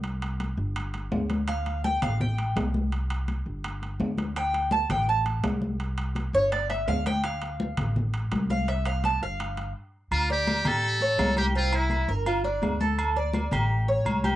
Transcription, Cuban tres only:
\new Staff \with { instrumentName = "Cuban tres" } { \time 4/4 \key d \minor \tempo 4 = 167 r1 | f''4 g''8 f''8 g''4 r4 | r1 | g''4 a''8 g''8 a''4 r4 |
r4. cis''8 d''8 e''8 f''8 g''8 | f''2 r4. f''8 | e''8 f''8 a''8 f''4. r4 | r8 d''4 g'4 cis''4 g'8 |
c'8 e'4 bes'8 f'8 d'4 a'8~ | a'8 d''4 g'4 cis''4 g'8 | }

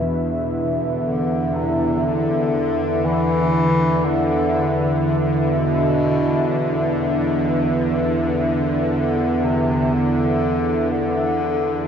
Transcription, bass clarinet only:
\new Staff \with { instrumentName = "Bass clarinet" } { \clef bass \time 4/4 \key c \major \tempo 4 = 61 r4 d8 c8 d4 e4 | d4 r8 b,4. r4 | r4 d8 c8 d4 d4 | }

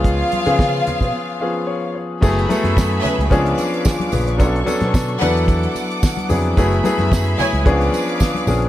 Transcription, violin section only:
\new Staff \with { instrumentName = "Violin section" } { \time 4/4 \key fis \minor \tempo 4 = 110 <eis' eis''>2.~ <eis' eis''>8 r8 | r4. <cis' b' e''>8 r2 | r4. <d' b' fis''>8 r2 | r4. <e' cis'' gis''>8 r2 | }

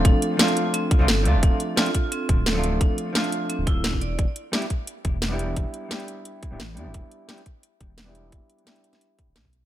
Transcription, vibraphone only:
\new Staff \with { instrumentName = "Vibraphone" } { \time 4/4 \key e \phrygian \tempo 4 = 174 d'8 r8 f'8 r8 c'8 r8 a'8 r8 | d'8 r8 f'8 r8 c'8 r8 a'8 r8 | d'8 r8 f'8 r8 c'8 e'8 d'8 d''8 | r1 |
r1 | r1 | r1 | }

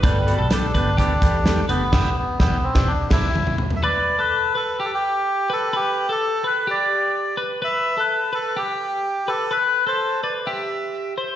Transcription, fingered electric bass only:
\new Staff \with { instrumentName = "Fingered electric bass" } { \clef bass \time 4/4 \key e \minor \tempo 4 = 127 g,,8. b,,8 r16 g,,8 d,8 e,4 fis,,8 | e,,8 r8 e,,8 r16 e,,8 r16 e,,8 r4 | \key g \major r1 | r1 |
r1 | r1 | }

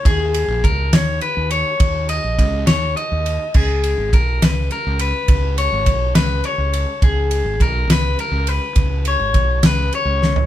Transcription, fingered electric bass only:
\new Staff \with { instrumentName = "Fingered electric bass" } { \clef bass \time 6/8 \key cis \dorian \tempo 4. = 69 dis,8. ais,,16 cis,8 dis,8 r16 dis,8 r16 | dis,8. ais,,16 cis,8 dis,8 r16 dis,8 r16 | cis,8. gis,,16 b,,8 cis,8 r16 cis,8 r16 | cis,8. gis,,16 b,,8 cis,8 r16 cis,8 r16 |
cis,8. gis,,16 b,,8 cis,8 r16 cis,8 r16 | cis,8. gis,,16 b,,8 cis,8 r16 cis,8 r16 | }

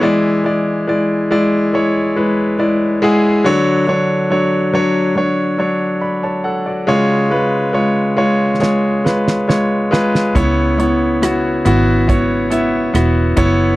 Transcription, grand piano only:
<<
  \new Staff \with { instrumentName = "Grand piano" } { \time 4/4 \key cis \phrygian \tempo 4 = 70 << { r2. d''8 fis''8 | r2. <d'' b''>16 <cis'' a''>16 <a' fis''>16 <fis' d''>16~ | <fis' d''>16 r2. r8. | r1 | } \\ { <gis e' d''>8 <gis e' d''>8 <gis e' d''>8 <gis e' d''>8 <gis e' cis''>8 <gis e' b'>8 <gis e'>8 <gis e' gis'>8 | <fis d' cis''>8 <fis d' cis''>8 <fis d' cis''>8 <fis d' cis''>8 <fis d' cis''>8 <fis d' cis''>8 r4 | <gis eis' cis''>8 <gis eis' b'>8 <gis eis' cis''>8 <gis eis' cis''>8 <gis eis' cis''>8 <gis eis' b'>8 <gis eis' cis''>8 <gis eis' b'>8 | <b e' cis''>8 <b e' cis''>8 <b e' fis'>8 <b e' fis'>8 <b e' cis''>8 <b e' e''>8 <b e' fis'>8 <b e' cis''>8 | } >> }
  \new Staff \with { instrumentName = "Grand piano" } { \clef bass \time 4/4 \key cis \phrygian e4. r2 r8 | d4. r2 r8 | cis4. r2 r8 | cis4. r2 r8 | }
>>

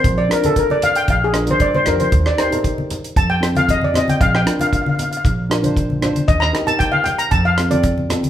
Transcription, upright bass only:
\new Staff \with { instrumentName = "Upright bass" } { \clef bass \time 4/4 \key bes \major \tempo 4 = 116 bes,,8 r4. bes,,4 g,8 f,8 | ees,8 r4. f,2 | bes,,8 r4. bes,,2 | ees,8 r4. f,2 | }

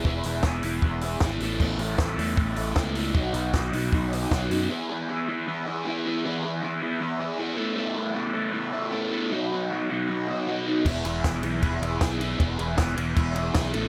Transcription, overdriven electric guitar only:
\new Staff \with { instrumentName = "Overdriven electric guitar" } { \time 4/4 \key e \major \tempo 4 = 156 <e b e' gis'>8 <b e' gis'>8 <e b e' gis'>8 <e b e' gis'>8 <e b e' gis'>8 <b e' gis'>8 <e b e' gis'>8 <a b e' a'>8 | <a b e' a'>8 <b e' a'>8 <a b e' a'>8 <a b e' a'>8 <a b e' a'>8 <b e' a'>8 <a b e' a'>8 <b e' a'>8 | <b, fis b dis' fis'>8 <b dis' fis'>8 <fis b dis' fis'>8 <b, fis b dis' fis'>8 <fis b dis' fis'>8 <b dis' fis'>8 <b, fis b dis' fis'>8 <b dis' fis'>8 | <e b e' gis'>8 <b e' gis'>8 <e b e' gis'>8 <e b e' gis'>8 <e b e' gis'>8 <b e' gis'>8 <e b e' gis'>8 <b e' gis'>8 |
<e b e' gis'>8 <b e' gis'>8 <e b e' gis'>8 <e b e' gis'>8 <e b e' gis'>8 <b e' gis'>8 <e b e' gis'>8 <a b e' a'>8 | <a b e' a'>8 <b e' a'>8 <a b e' a'>8 <a b e' a'>8 <a b e' a'>8 <b e' a'>8 <a b e' a'>8 <b e' a'>8 | <b, fis b dis' fis'>8 <b dis' fis'>8 <fis b dis' fis'>8 <b, fis b dis' fis'>8 <fis b dis' fis'>8 <b dis' fis'>8 <b, fis b dis' fis'>8 <b dis' fis'>8 | <e b e' gis'>8 <b e' gis'>8 <e b e' gis'>8 <e b e' gis'>8 <e b e' gis'>8 <b e' gis'>8 <e b e' gis'>8 <b e' gis'>8 |
<e b e' gis'>8 <b e' gis'>8 <e b e' gis'>8 <e b e' gis'>8 <e b e' gis'>8 <b e' gis'>8 <e b e' gis'>8 <a b e' a'>8 | }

